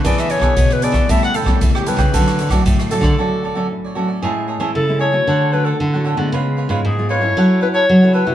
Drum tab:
HH |xxx-xxxxx-x-x-xx|xxxxxxx---------|----------------|----------------|
SD |-r-r-r-r-r-r-r-r|-r-r-r-r--------|----------------|----------------|
BD |o--oo--oo--oo--o|o--oo--o--------|----------------|----------------|